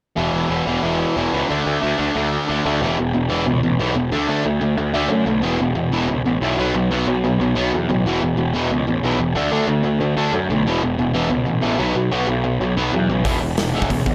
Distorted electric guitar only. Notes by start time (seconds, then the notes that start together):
0.16 E2 B2 E3
0.50 E2 B2 E3
0.67 E2 B2 E3
0.83 E2 B2 E3
1.16 E2 B2 E3
1.33 E2 B2 E3
1.49 D3 A3 D4
1.82 D3 A3 D4
1.98 D3 A3 D4
2.15 D3 A3 D4
2.48 D3 A3 D4
2.66 D3 A3 D4
2.82 E2 B2 E3
2.98 E2 B2
3.13 E2 B2
3.29 E2 B2 E3
3.46 E2 B2
3.63 E2 B2
3.79 E2 B2 E3
3.96 E2 B2
4.12 D3 A3 D4
4.28 D3 A3 D4
4.45 D3 A3
4.61 D3 A3
4.78 D3 A3
4.94 D3 A3 D4
5.10 D3 A3
5.26 D3 A3
5.42 E2 B2 E3
5.60 E2 B2
5.75 E2 B2
5.92 E2 B2 E3
6.09 E2 B2
6.26 E2 B2
6.42 E2 B2 E3
6.59 B2 F#3 B3
6.75 B2 F#3
6.91 B2 F#3 B3
7.07 B2 F#3
7.24 B2 F#3
7.41 B2 F#3
7.55 B2 F#3 B3
7.74 B2 F#3
7.89 B2 F#3
8.06 E2 B2 E3
8.23 E2 B2
8.37 E2 B2
8.54 E2 B2 E3
8.71 E2 B2
8.87 E2 B2
9.04 E2 B2 E3
9.19 E2 B2
9.35 D3 A3 D4
9.52 D3 A3 D4
9.68 D3 A3
9.84 D3 A3
10.01 D3 A3
10.17 D3 A3 D4
10.34 D3 A3
10.50 D3 A3
10.67 E2 B2 E3
10.83 E2 B2
10.99 E2 B2
11.14 E2 B2 E3
11.30 E2 B2
11.46 E2 B2
11.62 E2 B2 E3
11.79 B2 F#3 B3
11.96 B2 F#3
12.12 B2 F#3 B3
12.28 B2 F#3
12.44 B2 F#3
12.61 B2 F#3
12.77 B2 F#3 B3
12.94 B2 F#3
13.10 B2 F#3
13.24 E2 B2 E3
13.42 E2 B2
13.58 E2 B2
13.74 E2 B2 E3
13.90 E2 B2
14.06 E2 B2